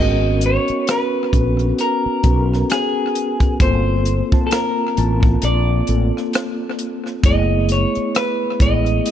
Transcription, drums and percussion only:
0.41 closed hi-hat
0.68 closed hi-hat
0.87 cross-stick, closed hi-hat
1.33 kick, closed hi-hat
1.59 closed hi-hat
1.78 closed hi-hat
2.23 kick, closed hi-hat
2.54 cross-stick
2.70 cross-stick, closed hi-hat
3.15 closed hi-hat
3.40 kick, closed hi-hat
3.60 kick, closed hi-hat
4.05 closed hi-hat
4.32 kick
4.51 cross-stick, closed hi-hat
4.97 closed hi-hat
5.23 kick
5.42 closed hi-hat
5.87 closed hi-hat
6.17 cross-stick
6.33 cross-stick, closed hi-hat
6.79 closed hi-hat
7.06 cross-stick
7.23 kick, closed hi-hat
7.69 closed hi-hat
7.95 closed hi-hat
8.15 cross-stick, closed hi-hat
8.60 kick, closed hi-hat
8.86 closed hi-hat
9.06 closed hi-hat

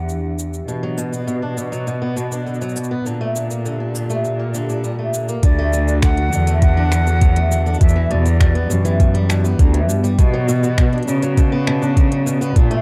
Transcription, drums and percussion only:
0.09 shaker
0.39 shaker
0.54 shaker
0.69 shaker
0.98 shaker
1.13 shaker
1.28 shaker
1.58 shaker
1.73 shaker
1.87 shaker
2.17 shaker
2.32 shaker
2.47 shaker
2.54 shaker
2.62 shaker
2.69 shaker
2.76 shaker
2.84 shaker
3.06 shaker
3.36 shaker
3.51 shaker
3.66 shaker
3.95 shaker
4.10 shaker
4.25 shaker
4.54 shaker
4.69 shaker
4.84 shaker
5.14 shaker
5.29 shaker
5.43 kick, closed hi-hat, shaker
5.73 shaker
5.88 shaker
6.02 finger snap, kick, closed hi-hat, shaker
6.17 closed hi-hat
6.33 shaker
6.47 closed hi-hat, shaker
6.62 kick, closed hi-hat, shaker
6.92 finger snap, shaker
7.07 shaker
7.21 kick, closed hi-hat, shaker
7.36 closed hi-hat
7.52 shaker
7.67 shaker
7.74 shaker
7.81 kick, closed hi-hat, shaker
7.89 shaker
8.11 closed hi-hat
8.26 closed hi-hat, shaker
8.40 finger snap, kick, closed hi-hat, shaker
8.55 closed hi-hat
8.71 shaker
8.85 closed hi-hat, shaker
9.00 kick, closed hi-hat, shaker
9.15 closed hi-hat
9.30 finger snap, shaker
9.45 shaker
9.59 kick, closed hi-hat, shaker
9.74 closed hi-hat
9.89 shaker
10.04 shaker
10.19 kick, closed hi-hat, shaker
10.49 shaker
10.64 shaker
10.78 finger snap, kick, closed hi-hat, shaker
10.93 closed hi-hat
10.98 closed hi-hat
11.03 closed hi-hat
11.08 shaker
11.22 closed hi-hat, shaker
11.37 kick, closed hi-hat, shaker
11.67 finger snap
11.83 shaker
11.97 kick, closed hi-hat, shaker
12.12 closed hi-hat
12.27 shaker
12.42 shaker
12.56 kick, closed hi-hat, shaker
12.71 closed hi-hat

